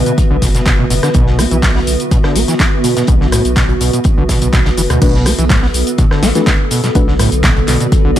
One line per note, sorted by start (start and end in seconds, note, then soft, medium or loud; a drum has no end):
0.00 4.98 D3 medium
0.00 4.98 B3 medium
0.00 5.01 B3 medium
0.00 5.02 F#4 medium
0.00 1.13 B4 medium
0.00 5.02 B4 medium
0.00 6.53 E5 medium
0.06 0.13 B2 medium
0.06 closed hi-hat soft
0.06 cabasa soft
0.18 kick loud
0.18 closed hi-hat medium
0.18 cabasa soft
0.30 0.39 B1 loud
0.30 0.37 D3 loud
0.42 0.86 F#1 medium
0.42 0.49 B2 medium
0.42 kick medium
0.42 snare soft
0.42 closed hi-hat medium
0.42 open hi-hat loud
0.42 cabasa medium
0.55 0.61 B2 medium
0.55 snare medium
0.55 closed hi-hat soft
0.55 cabasa soft
0.66 0.73 B2 medium
0.66 kick loud
0.66 snare loud
0.66 clap loud
0.66 closed hi-hat medium
0.66 cabasa soft
0.79 0.85 B2 loud
0.90 1.00 F#1 medium
0.90 0.95 B2 loud
0.90 closed hi-hat medium
0.90 open hi-hat loud
0.90 cabasa medium
1.03 1.09 D3 loud
1.03 cross-stick medium
1.03 snare medium
1.03 closed hi-hat medium
1.03 cabasa soft
1.14 1.47 B1 medium
1.14 1.40 B2 loud
1.14 5.00 F#4 medium
1.14 kick loud
1.14 closed hi-hat medium
1.14 cabasa soft
1.27 snare soft
1.39 1.46 B3 medium
1.39 cross-stick medium
1.39 closed hi-hat medium
1.39 open hi-hat loud
1.39 cabasa medium
1.51 1.83 B1 medium
1.51 1.58 E3 medium
1.51 closed hi-hat medium
1.51 cabasa soft
1.63 1.70 A2 medium
1.63 kick loud
1.63 snare loud
1.63 clap loud
1.63 closed hi-hat medium
1.63 open hi-hat medium
1.63 cabasa soft
1.76 1.79 B3 medium
1.76 snare medium
1.87 1.97 B1 medium
1.87 closed hi-hat medium
1.87 open hi-hat loud
1.87 cabasa medium
2.00 closed hi-hat soft
2.00 cabasa soft
2.11 2.18 B2 medium
2.11 kick loud
2.11 closed hi-hat medium
2.11 cabasa soft
2.23 2.37 D3 medium
2.23 cross-stick medium
2.23 snare medium
2.36 2.45 A1 loud
2.36 2.43 B3 medium
2.36 closed hi-hat medium
2.36 open hi-hat loud
2.36 cabasa medium
2.48 2.55 E3 medium
2.48 snare soft
2.48 closed hi-hat medium
2.48 cabasa soft
2.60 2.64 D3 medium
2.60 kick loud
2.60 snare loud
2.60 clap loud
2.60 closed hi-hat medium
2.60 cabasa soft
2.84 2.94 B2 medium
2.84 closed hi-hat medium
2.84 open hi-hat loud
2.84 cabasa medium
2.97 3.03 B2 medium
2.97 snare medium
2.97 closed hi-hat medium
2.97 cabasa soft
3.07 3.40 B1 loud
3.07 3.15 B2 medium
3.07 kick loud
3.07 closed hi-hat medium
3.07 cabasa soft
3.21 3.27 D3 medium
3.21 snare soft
3.32 3.43 A2 loud
3.32 cross-stick medium
3.32 closed hi-hat medium
3.32 open hi-hat loud
3.32 cabasa medium
3.45 3.76 B1 medium
3.45 closed hi-hat medium
3.45 closed hi-hat soft
3.45 cabasa soft
3.56 3.64 B2 loud
3.56 kick loud
3.56 snare loud
3.56 clap loud
3.56 closed hi-hat medium
3.56 cabasa soft
3.69 3.73 B2 medium
3.69 closed hi-hat soft
3.81 3.90 B1 medium
3.81 3.91 B2 medium
3.81 closed hi-hat medium
3.81 open hi-hat loud
3.81 cabasa medium
3.93 4.00 B2 medium
3.93 closed hi-hat medium
3.93 cabasa soft
4.04 kick loud
4.04 closed hi-hat medium
4.04 cabasa soft
4.18 4.26 B1 loud
4.18 4.24 D3 loud
4.29 4.40 B2 medium
4.29 kick medium
4.29 snare loud
4.29 closed hi-hat medium
4.29 open hi-hat loud
4.29 cabasa medium
4.41 4.73 B1 loud
4.41 4.48 B2 medium
4.41 closed hi-hat soft
4.41 closed hi-hat medium
4.41 cabasa soft
4.53 4.60 B2 loud
4.53 kick loud
4.53 clap loud
4.53 closed hi-hat medium
4.53 cabasa soft
4.65 4.70 D3 loud
4.65 snare loud
4.65 closed hi-hat medium
4.77 4.87 F#1 medium
4.77 4.82 E3 medium
4.77 closed hi-hat soft
4.77 open hi-hat loud
4.77 cabasa medium
4.90 4.99 D2 medium
4.90 5.00 B2 medium
4.90 cross-stick medium
4.90 closed hi-hat medium
4.90 cabasa soft
5.02 5.34 B1 loud
5.02 5.27 B2 loud
5.02 8.19 D3 medium
5.02 5.10 A3 medium
5.02 8.19 B3 medium
5.02 5.10 D4 medium
5.02 5.10 F#4 medium
5.02 8.19 A4 medium
5.02 5.10 B4 medium
5.02 kick loud
5.02 closed hi-hat medium
5.02 crash loud
5.02 cabasa soft
5.15 snare soft
5.25 5.33 B3 medium
5.25 cross-stick medium
5.25 closed hi-hat medium
5.25 open hi-hat loud
5.25 cabasa medium
5.39 5.70 B1 medium
5.39 5.45 E3 medium
5.39 closed hi-hat medium
5.39 cabasa soft
5.48 5.57 A2 medium
5.48 8.19 F#4 loud
5.48 kick loud
5.48 snare medium
5.48 snare loud
5.48 clap loud
5.48 closed hi-hat medium
5.48 open hi-hat medium
5.48 cabasa soft
5.60 5.67 B3 medium
5.60 8.19 B4 medium
5.60 snare soft
5.74 5.84 B1 medium
5.74 closed hi-hat medium
5.74 open hi-hat loud
5.74 cabasa medium
5.87 closed hi-hat medium
5.87 cabasa soft
5.98 6.05 B2 medium
5.98 kick loud
5.98 closed hi-hat medium
5.98 cabasa soft
6.11 6.24 D3 medium
6.11 cross-stick medium
6.11 snare medium
6.19 6.32 A1 loud
6.19 6.30 B3 medium
6.19 8.19 D5 medium
6.19 snare medium
6.19 closed hi-hat medium
6.19 open hi-hat loud
6.23 cabasa medium
6.35 6.42 E3 medium
6.35 6.47 A3 medium
6.35 6.47 D4 medium
6.35 6.47 F#4 medium
6.35 6.47 B4 medium
6.35 snare soft
6.35 closed hi-hat medium
6.35 cabasa soft
6.46 6.51 D3 medium
6.46 kick loud
6.46 snare loud
6.46 clap loud
6.46 closed hi-hat medium
6.46 cabasa soft
6.71 6.82 B2 medium
6.71 closed hi-hat medium
6.71 open hi-hat loud
6.71 cabasa medium
6.84 6.90 B2 medium
6.84 snare medium
6.84 snare soft
6.84 closed hi-hat medium
6.84 cabasa soft
6.95 7.27 B1 loud
6.95 7.02 B2 medium
6.95 7.03 A3 medium
6.95 7.03 D4 medium
6.95 7.03 F#4 medium
6.95 7.03 B4 medium
6.95 kick loud
6.95 closed hi-hat medium
6.95 cabasa soft
7.08 7.14 D3 loud
7.08 snare medium
7.19 7.30 A2 loud
7.19 cross-stick medium
7.19 closed hi-hat medium
7.19 open hi-hat loud
7.19 cabasa medium
7.32 7.63 B1 medium
7.32 closed hi-hat medium
7.32 closed hi-hat soft
7.32 cabasa soft
7.43 7.51 B2 loud
7.43 kick loud
7.43 snare loud
7.43 snare medium
7.43 clap loud
7.43 closed hi-hat medium
7.43 cabasa soft
7.56 7.60 B2 medium
7.56 closed hi-hat soft
7.68 7.77 B1 medium
7.68 7.78 B2 medium
7.68 snare soft
7.68 clap soft
7.68 closed hi-hat medium
7.68 open hi-hat loud
7.68 cabasa medium
7.80 7.87 B2 medium
7.80 closed hi-hat medium
7.80 cabasa soft
7.92 kick loud
7.92 closed hi-hat medium
7.92 cabasa soft
8.05 8.14 B1 loud
8.05 8.11 D3 loud
8.16 8.19 F#1 medium
8.16 8.19 B2 medium
8.16 8.19 A3 medium
8.16 8.19 D4 medium
8.16 8.19 F#4 medium
8.16 8.19 D5 loud
8.16 snare medium
8.16 open hi-hat loud